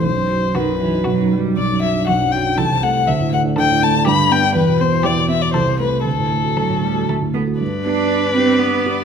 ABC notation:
X:1
M:3/4
L:1/16
Q:1/4=120
K:Bphr
V:1 name="Violin"
c4 B6 z2 | [K:G] d2 e2 f2 g2 a2 f2 | e2 f2 g2 a2 b2 g2 | B2 c2 d2 e d c2 B2 |
A8 z4 | d12 |]
V:2 name="Violin"
z4 F4 F4 | [K:G] z4 F4 A4 | z4 A4 G4 | z4 G4 A4 |
z4 A4 A4 | B12 |]
V:3 name="Cello" clef=bass
z4 ^D,2 E,2 F,2 G,2 | [K:G] z4 F,4 E,4 | z4 D,4 D,4 | z4 E,4 E,4 |
z4 F,2 G,2 A,2 B,2 | z2 D4 C2 B,4 |]
V:4 name="Grand piano" clef=bass
B,,, F,, F,2 B,,, F,, F, ^D B,,, F,, F, D | [K:G] B,,, F,, F, D B,,, F,, F, D C,, C, A, E | D,, A,, A, D D,, A,, A, D G,, D, B, D | E,, B,, B, E E,, B,, B, E C,, C, A, E |
D,, A,, A, F D,, A,, A, F D,, A,, A, F | G,,2 [B,DG]4 [B,DG]4 [B,DG]2 |]